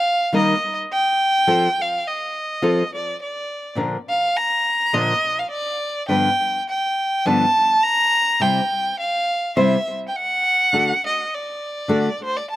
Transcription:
Already playing: violin F5
0.33 nylon-string guitar D#3 G3 A#3 D#4 A#4, violin D#5
0.93 violin G5
1.47 nylon-string guitar F3 C4 F4 A4
1.82 violin F5
2.07 violin D#5
2.62 nylon-string guitar F3 C4 F4 A4
2.95 violin D5
3.23 violin D5
3.75 nylon-string guitar A#2 D3 F3 A#3 D4 A#4
4.09 violin F5
4.37 violin A#5
4.93 nylon-string guitar A#2 D3 F3 A#3 D4 A#4, violin D#5
5.39 violin F5
5.51 violin D5
6.08 nylon-string guitar G2 D3 F3 B3 D4 B4, violin G5
6.69 violin G5
7.25 nylon-string guitar G2 D3 F3 B3 D4 B4, violin A5
7.83 violin A#5
8.40 nylon-string guitar C3 G3 C4 E4 C5, violin G5
8.99 violin F5
9.56 nylon-string guitar C3 G3 C4 E4 C5, violin E5
10.08 violin G5
10.16 violin F#5
10.73 nylon-string guitar D3 A3 D4 F#4 A4
11.07 violin D#5
11.34 violin D5
11.88 nylon-string guitar D3 A3 D4 F#4 A4
12.24 violin C5
12.37 violin D5
12.51 violin A5

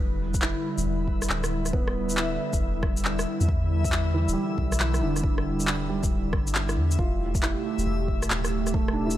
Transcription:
Already playing: felt piano B3
0.00 808-style bass E1, analog synth pad D3 G3 E4, synth texture E5
0.34 kick, shaker
0.42 felt piano E4, clap
0.78 808-style bass D1, shaker
0.86 808-style bass E1
1.08 kick
1.22 cross-stick, shaker
1.29 808-style bass D1, clap
1.44 cross-stick, shaker
1.66 cross-stick, shaker
1.73 felt piano B3, kick
1.88 cross-stick
2.09 shaker
2.17 clap
2.53 808-style bass D1, kick, shaker
2.61 808-style bass E1
2.83 kick, cross-stick
2.97 shaker
3.05 clap
3.19 cross-stick, shaker
3.41 808-style bass E2, shaker
3.49 kick
3.84 kick, shaker
3.92 clap
4.14 felt piano E3
4.28 808-style bass D1, shaker
4.33 felt piano G3
4.58 808-style bass B1, kick
4.72 cross-stick, shaker
4.80 clap
4.94 cross-stick, shaker
5.02 808-style bass E1, felt piano D3
5.16 cross-stick, shaker
5.24 kick
5.38 cross-stick
5.60 shaker
5.67 clap
5.89 felt piano G3
6.03 808-style bass D1, kick, shaker
6.33 808-style bass G1, kick, cross-stick
6.47 shaker
6.55 clap
6.69 cross-stick, shaker
6.77 808-style bass E2
6.91 shaker
6.99 808-style bass E1, analog synth pad B2 A3 G4, felt piano F4, kick
7.35 kick, shaker
7.43 felt piano E4, clap
7.78 808-style bass D1, shaker
7.86 808-style bass E1
8.08 kick
8.22 cross-stick, shaker
8.30 808-style bass D1, clap
8.45 cross-stick, shaker
8.67 cross-stick, shaker
8.74 felt piano A3, kick
8.88 cross-stick
8.93 felt piano D4
9.06 felt piano E4
9.10 shaker

